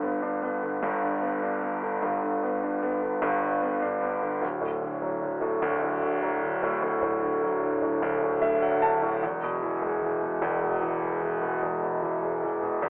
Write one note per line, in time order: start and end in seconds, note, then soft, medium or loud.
0.00 0.81 G1 medium
0.00 0.81 G2 medium
0.00 0.61 D3 medium
0.00 0.41 B3 medium
0.22 1.41 D4 medium
0.42 1.21 B3 medium
0.63 1.01 D3 medium
0.83 2.01 G1 medium
0.83 2.01 G2 medium
1.03 1.81 D3 medium
1.22 1.60 B3 medium
1.42 2.62 D4 soft
1.62 2.42 B3 soft
1.82 2.22 D3 medium
2.02 3.20 G1 medium
2.02 3.21 G2 medium
2.23 3.01 D3 medium
2.43 2.81 B3 medium
2.63 3.80 D4 medium
2.83 3.61 B3 medium
3.02 3.41 D3 medium
3.22 4.38 G1 medium
3.22 4.39 G2 medium
3.43 4.21 D3 medium
3.62 4.00 B3 medium
3.82 4.40 D4 medium
4.02 4.41 B3 soft
4.22 4.42 D3 medium
4.42 5.61 D1 medium
4.42 5.61 D2 medium
4.62 5.40 A2 medium
4.82 5.20 D3 medium
5.02 6.21 F#3 soft
5.21 6.00 D3 medium
5.41 5.81 A2 medium
5.62 6.80 D1 medium
5.62 6.81 D2 medium
5.83 6.61 A2 medium
6.02 6.41 D3 medium
6.22 7.41 F#3 medium
6.43 7.21 D3 medium
6.63 7.01 A2 medium
6.82 8.00 D1 medium
6.82 8.01 D2 medium
7.03 7.80 A2 medium
7.22 7.61 D3 medium
7.43 8.61 F#3 medium
7.62 8.40 D3 medium
7.82 8.20 A2 medium
8.02 9.18 D1 medium
8.02 9.19 D2 medium
8.22 9.01 A2 medium
8.42 8.81 D3 medium
8.42 8.61 E5 medium
8.62 9.20 F#3 medium
8.62 8.81 F#5 medium
8.82 9.21 D3 medium
8.82 9.19 A5 medium
9.02 9.22 A2 medium
9.23 10.40 E1 medium
9.23 10.41 E2 medium
9.43 10.21 B2 medium
9.63 10.01 E3 medium
9.82 11.00 G#3 medium
10.02 10.81 E3 medium
10.22 10.61 B2 soft
10.42 11.61 E1 medium
10.42 11.61 E2 medium
10.63 11.40 B2 medium
10.82 11.20 E3 medium
11.02 12.20 G#3 soft
11.22 12.01 E3 medium
11.42 11.81 B2 medium
11.62 12.81 E1 medium
11.62 12.81 E2 medium
11.82 12.62 B2 medium
12.02 12.42 E3 medium
12.22 12.89 G#3 medium
12.43 12.89 E3 medium
12.63 12.89 B2 soft
12.82 12.89 E1 medium
12.82 12.89 E2 medium